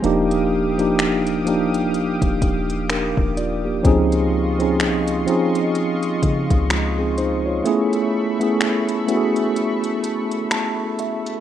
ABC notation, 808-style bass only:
X:1
M:4/4
L:1/16
Q:"Swing 16ths" 1/4=63
K:Dblyd
V:1 name="808-style bass" clef=bass
E,,,8- E,,, E,,, E,,,3 E,,,3 | D,,4 C,, D,, z4 D, D,,4- D,, | z16 |]